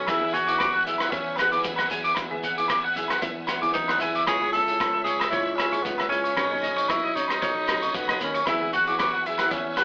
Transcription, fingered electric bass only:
0, 0, Header, 1, 2, 480
1, 0, Start_track
1, 0, Key_signature, 4, "major"
1, 0, Tempo, 524476
1, 71, Time_signature, 4, 2, 24, 8
1, 9007, End_track
2, 0, Start_track
2, 0, Title_t, "Fingered electric bass"
2, 0, Program_c, 0, 33
2, 74, Note_on_c, 0, 40, 82
2, 995, Note_off_c, 0, 40, 0
2, 1026, Note_on_c, 0, 40, 92
2, 1478, Note_off_c, 0, 40, 0
2, 1508, Note_on_c, 0, 40, 80
2, 1733, Note_off_c, 0, 40, 0
2, 1748, Note_on_c, 0, 40, 84
2, 1974, Note_off_c, 0, 40, 0
2, 1983, Note_on_c, 0, 40, 89
2, 2909, Note_off_c, 0, 40, 0
2, 2949, Note_on_c, 0, 40, 95
2, 3399, Note_off_c, 0, 40, 0
2, 3433, Note_on_c, 0, 40, 82
2, 3656, Note_off_c, 0, 40, 0
2, 3674, Note_on_c, 0, 40, 79
2, 3896, Note_off_c, 0, 40, 0
2, 3914, Note_on_c, 0, 37, 86
2, 4834, Note_off_c, 0, 37, 0
2, 4877, Note_on_c, 0, 37, 95
2, 5323, Note_off_c, 0, 37, 0
2, 5356, Note_on_c, 0, 37, 76
2, 5577, Note_off_c, 0, 37, 0
2, 5593, Note_on_c, 0, 37, 80
2, 5816, Note_off_c, 0, 37, 0
2, 5835, Note_on_c, 0, 35, 75
2, 6755, Note_off_c, 0, 35, 0
2, 6793, Note_on_c, 0, 35, 90
2, 7241, Note_off_c, 0, 35, 0
2, 7271, Note_on_c, 0, 35, 74
2, 7495, Note_off_c, 0, 35, 0
2, 7513, Note_on_c, 0, 39, 80
2, 7736, Note_off_c, 0, 39, 0
2, 7749, Note_on_c, 0, 40, 81
2, 8673, Note_off_c, 0, 40, 0
2, 8706, Note_on_c, 0, 40, 89
2, 9007, Note_off_c, 0, 40, 0
2, 9007, End_track
0, 0, End_of_file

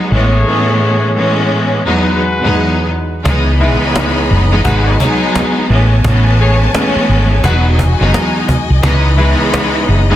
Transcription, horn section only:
0, 0, Header, 1, 2, 480
1, 0, Start_track
1, 0, Key_signature, 4, "minor"
1, 0, Tempo, 697674
1, 319, Time_signature, 4, 2, 24, 8
1, 6989, End_track
2, 0, Start_track
2, 0, Title_t, "Horn section"
2, 0, Program_c, 0, 61
2, 71, Note_on_c, 0, 68, 85
2, 71, Note_on_c, 0, 73, 101
2, 72, Note_on_c, 0, 57, 84
2, 1015, Note_off_c, 0, 73, 0
2, 1016, Note_off_c, 0, 57, 0
2, 1016, Note_off_c, 0, 68, 0
2, 1284, Note_on_c, 0, 71, 94
2, 1285, Note_on_c, 0, 56, 82
2, 1285, Note_on_c, 0, 66, 86
2, 1987, Note_off_c, 0, 56, 0
2, 1987, Note_off_c, 0, 66, 0
2, 1987, Note_off_c, 0, 71, 0
2, 2482, Note_on_c, 0, 64, 82
2, 2482, Note_on_c, 0, 71, 89
2, 2483, Note_on_c, 0, 56, 84
2, 2592, Note_off_c, 0, 64, 0
2, 2592, Note_off_c, 0, 71, 0
2, 2593, Note_off_c, 0, 56, 0
2, 3197, Note_on_c, 0, 71, 105
2, 3198, Note_on_c, 0, 56, 96
2, 3198, Note_on_c, 0, 66, 101
2, 3402, Note_off_c, 0, 56, 0
2, 3402, Note_off_c, 0, 66, 0
2, 3402, Note_off_c, 0, 71, 0
2, 4406, Note_on_c, 0, 57, 77
2, 4407, Note_on_c, 0, 68, 82
2, 4407, Note_on_c, 0, 73, 97
2, 4517, Note_off_c, 0, 57, 0
2, 4517, Note_off_c, 0, 68, 0
2, 4517, Note_off_c, 0, 73, 0
2, 5119, Note_on_c, 0, 56, 94
2, 5119, Note_on_c, 0, 66, 92
2, 5120, Note_on_c, 0, 71, 104
2, 5272, Note_off_c, 0, 56, 0
2, 5272, Note_off_c, 0, 66, 0
2, 5272, Note_off_c, 0, 71, 0
2, 6315, Note_on_c, 0, 64, 81
2, 6316, Note_on_c, 0, 56, 85
2, 6316, Note_on_c, 0, 71, 85
2, 6425, Note_off_c, 0, 64, 0
2, 6426, Note_off_c, 0, 56, 0
2, 6426, Note_off_c, 0, 71, 0
2, 6989, End_track
0, 0, End_of_file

